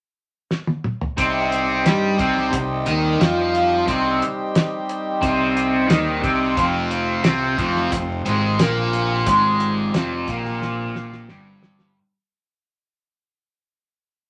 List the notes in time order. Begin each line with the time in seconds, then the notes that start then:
0.51 snare
0.67 high tom
0.84 mid tom
1.01 floor tom
1.17 C2 C3 G3 C4 D#4 G4 C5, kick, closed hi-hat
1.52 closed hi-hat
1.85 G2 G3 G4, snare, closed hi-hat
2.18 C2 C3 C4, kick, closed hi-hat
2.37 snare
2.52 C2 C3, kick, closed hi-hat
2.86 D#2 D#3 D#4, closed hi-hat
3.19 F2 F3 F4, snare, closed hi-hat
3.55 closed hi-hat
3.86 C2 C3 C4, kick, closed hi-hat
4.22 closed hi-hat
4.55 snare, closed hi-hat
4.89 closed hi-hat
5.21 C2 C3 C4, kick, closed hi-hat
5.57 closed hi-hat
5.87 D#2 D#3 D#4, snare, closed hi-hat
6.23 C2 C3 C4, kick, closed hi-hat
6.56 F1 F2 C3 F3 F4, kick, closed hi-hat
6.91 closed hi-hat
7.23 C2 C3 C4, snare, closed hi-hat
7.57 F1 F2 F3, kick, closed hi-hat
7.76 snare
7.92 F1 F2, kick, closed hi-hat
8.25 G#1 G#2 G#3, closed hi-hat
8.59 A#1 A#2 A#3, snare, closed hi-hat
8.93 closed hi-hat
9.26 G#1 G#2 G#3 D5, kick, closed hi-hat
9.60 closed hi-hat
9.94 F1 F2 F3, snare, closed hi-hat
10.28 A#1 A#2 A#3, kick, closed hi-hat
10.45 snare
10.62 snare
10.95 snare
11.12 snare
11.29 G1 G2 G3, snare
11.63 snare
11.79 snare